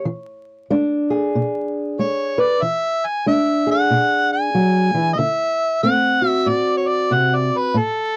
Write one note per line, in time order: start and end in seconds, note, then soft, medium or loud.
0.05 0.65 E3 medium
0.70 1.29 G#3 medium
0.70 2.65 D4 medium
1.10 2.60 G#4 medium
1.35 1.94 B2 medium
1.99 2.58 G#3 medium
1.99 2.42 C#5 medium
2.38 2.60 B4 medium
2.38 2.63 D5 medium
2.62 3.21 E3 medium
2.62 3.07 E5 loud
3.06 3.27 G#5 loud
3.26 3.85 G#3 medium
3.26 5.16 D4 medium
3.26 3.67 E5 medium
3.67 5.16 G#4 medium
3.71 4.30 F#5 loud
3.90 4.49 B2 medium
4.33 5.09 G#5 loud
4.55 4.93 F#3 medium
4.94 5.18 E3 medium
5.13 5.20 D#5 medium
5.18 5.78 D3 medium
5.18 5.82 E5 loud
5.83 6.42 A3 medium
5.83 7.75 C4 medium
5.83 6.28 F#5 loud
6.22 7.72 F#4 medium
6.28 6.50 E5 loud
6.46 7.05 A2 medium
6.46 6.77 D5 medium
6.77 6.90 C#5 medium
6.88 7.14 D5 medium
7.11 7.49 C3 medium
7.11 7.36 F#5 medium
7.35 7.59 D5 medium
7.57 7.79 B4 medium
7.74 8.17 A2 medium
7.74 8.17 A4 medium